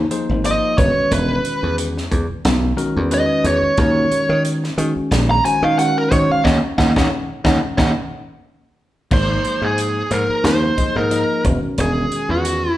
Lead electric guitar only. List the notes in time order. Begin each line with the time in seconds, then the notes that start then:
0.46 D#5
0.78 C#5
1.13 B4
3.14 D#5
3.46 C#5
3.80 C#5
5.31 A#5
5.45 G#5
5.64 F5
5.79 F#5
5.98 A#4
6.12 C#5
6.32 F5
6.44 C#5 D#5 F#5
6.78 C#5 D#5 F#5
6.97 C#5 D#5 F#5
7.45 C#5 D#5 F#5
7.78 C#5 D#5 F#5
9.13 C5
9.64 G#4
10.12 A#4
10.46 C5
10.97 A#4
11.81 G#4
12.31 F#4